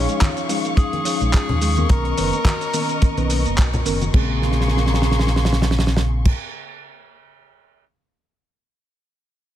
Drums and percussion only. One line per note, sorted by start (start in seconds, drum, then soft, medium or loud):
0.09 closed hi-hat soft
0.09 shaker soft
0.21 kick medium
0.21 clap loud
0.21 closed hi-hat loud
0.21 high conga medium
0.21 shaker soft
0.37 closed hi-hat soft
0.37 shaker soft
0.49 open hi-hat medium
0.49 shaker medium
0.65 closed hi-hat soft
0.65 shaker soft
0.77 kick loud
0.77 closed hi-hat medium
0.77 shaker soft
0.93 closed hi-hat soft
0.93 high conga medium
1.05 open hi-hat loud
1.05 shaker medium
1.21 closed hi-hat soft
1.21 shaker soft
1.33 kick loud
1.33 clap loud
1.33 closed hi-hat medium
1.33 shaker soft
1.49 closed hi-hat soft
1.49 low conga medium
1.62 open hi-hat medium
1.62 shaker medium
1.77 closed hi-hat soft
1.77 high conga medium
1.77 shaker soft
1.89 kick loud
1.89 closed hi-hat loud
1.89 shaker soft
2.05 closed hi-hat soft
2.18 open hi-hat loud
2.18 shaker medium
2.33 closed hi-hat soft
2.33 shaker soft
2.45 kick loud
2.45 clap loud
2.45 closed hi-hat loud
2.45 high conga medium
2.45 shaker soft
2.61 closed hi-hat soft
2.61 shaker soft
2.74 open hi-hat medium
2.74 shaker medium
2.89 closed hi-hat soft
2.89 shaker soft
3.02 kick loud
3.02 closed hi-hat loud
3.02 shaker soft
3.17 closed hi-hat soft
3.17 high conga medium
3.17 shaker soft
3.30 open hi-hat loud
3.30 shaker medium
3.46 closed hi-hat soft
3.46 shaker soft
3.58 kick loud
3.58 clap loud
3.58 closed hi-hat loud
3.58 shaker soft
3.74 closed hi-hat soft
3.74 low conga medium
3.74 shaker soft
3.86 open hi-hat medium
3.86 shaker medium
4.01 closed hi-hat soft
4.01 high conga medium
4.01 shaker soft
4.14 kick loud
4.14 crash loud
4.42 snare medium
4.52 snare medium
4.61 snare medium
4.68 snare medium
4.77 snare medium
4.86 snare medium
4.94 snare medium
5.02 snare medium
5.11 snare medium
5.19 snare medium
5.27 snare medium
5.36 snare medium
5.45 snare medium
5.53 snare medium
5.62 snare medium
5.71 snare medium
5.79 snare medium
5.87 snare loud
5.97 snare loud
6.25 kick loud
6.25 crash loud